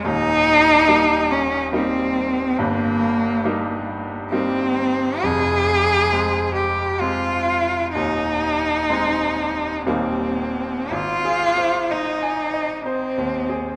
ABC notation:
X:1
M:3/4
L:1/8
Q:1/4=65
K:Ab
V:1 name="Cello"
E3 D C2 | B,3 z C2 | A3 G F2 | E4 C2 |
F2 E2 C2 |]
V:2 name="Grand piano"
[E,,,E,,]2 [G,B,E]2 [G,B,E]2 | [G,,,G,,]2 [G,B,E]2 [G,B,E]2 | [F,,,F,,]2 [A,C]2 [A,C]2 | [E,,,E,,]2 [A,CE]2 [E,,,E,,G,B,E]2 |
(3A,,, A c (3e a e (3c E,, A |]